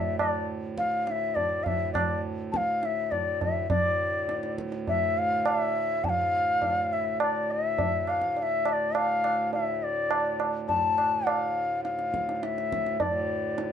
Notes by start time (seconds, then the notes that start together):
Already playing: D2 A2 E5
0.19 D5, tabla na, tabla ge
0.78 F5, tabla ke
1.06 F5, tabla te
1.11 E5
1.35 D5, tabla tin, tabla ge
1.63 E5 F5, tabla tin, tabla ge
1.93 D5, tabla na, tabla ge
2.52 A5, tabla ke
2.56 F5
2.82 E5 F5, tabla te
3.11 D5, tabla tin, tabla ge
3.41 E5, tabla tin, tabla ge
3.68 D2 A2 D5, tabla tin, tabla ge
4.29 tabla te
4.43 tabla te
4.58 tabla ke
4.72 tabla te
4.88 E5, tabla tin, tabla ge
5.18 F5
5.46 F5, tabla na
5.58 E5
6.04 A5, tabla tin, tabla ge
6.09 F5
6.62 tabla tin, tabla ge
6.93 E5
7.20 D5, tabla na
7.51 E5
7.78 tabla tin, tabla ge
8.07 F5, tabla na
8.22 tabla ke
8.37 F5, tabla tin
8.42 E5
8.65 E5, tabla na
8.73 D5
8.95 F5, tabla na
9.24 tabla na
9.53 E5, tabla tin
9.83 D5
10.11 tabla na
10.40 tabla na
10.68 A5, tabla tin, tabla ge
10.98 tabla na
11.26 F5, tabla na
11.84 F5, tabla te
11.99 tabla te
12.14 tabla ke
12.29 tabla te
12.36 F5
12.43 E5, tabla te
12.58 tabla te
12.72 tabla ke
12.86 tabla te
12.99 D2 A2 D5, tabla tin, tabla ge
13.58 tabla te